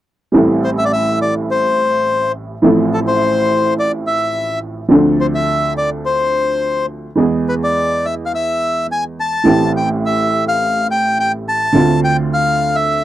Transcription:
0.32 upright piano A1 A2 G3 C4 E4
0.36 upright piano A4
0.64 bandoneon C5
0.78 bandoneon E5
0.85 bandoneon D5
0.93 bandoneon E5
1.22 bandoneon D5
1.51 bandoneon C5
2.62 upright piano A1 A2 F3 C4 E4 A4
2.94 bandoneon A4
3.07 bandoneon C5
3.79 bandoneon D5
4.07 bandoneon E5
4.88 upright piano D2 D3 F3 C4 D4
4.93 upright piano A4
5.21 bandoneon C5
5.35 bandoneon E5
5.78 bandoneon D5
6.06 bandoneon C5
7.15 upright piano E2 E3 G#3 B3 G#4
7.49 bandoneon B4
7.64 bandoneon D5
8.05 bandoneon E5
8.26 bandoneon F5
8.35 bandoneon E5
8.92 bandoneon G#5
9.20 bandoneon A5
9.44 upright piano A1 A2 E3 A3 C4 G4
9.77 bandoneon G5
10.06 bandoneon E5
10.48 bandoneon F5
10.91 bandoneon G5
11.20 bandoneon G5
11.48 bandoneon A5
11.73 upright piano D2 D3 A3 C4 F4
12.04 bandoneon G5
12.34 bandoneon F5
12.75 bandoneon E5

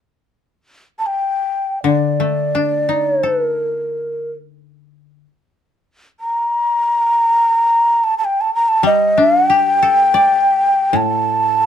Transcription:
0.99 shakuhachi A5
1.06 shakuhachi G5
1.84 koto D3, shakuhachi D5
2.20 koto A3
2.55 koto D4
2.89 koto D#4
3.05 shakuhachi C#5
3.20 koto A4, shakuhachi C5
3.35 shakuhachi B4
3.51 shakuhachi A#4
6.20 shakuhachi A#5
8.04 shakuhachi A5
8.18 shakuhachi A5
8.25 shakuhachi G5
8.41 shakuhachi A5
8.55 shakuhachi A#5
8.68 shakuhachi A5
8.83 koto G3, shakuhachi D#5
9.17 koto D4, shakuhachi E5
9.29 shakuhachi F5
9.41 shakuhachi F#5
9.50 koto G4, shakuhachi G5
9.83 koto A4
10.14 koto D5
10.93 koto A2, shakuhachi A5

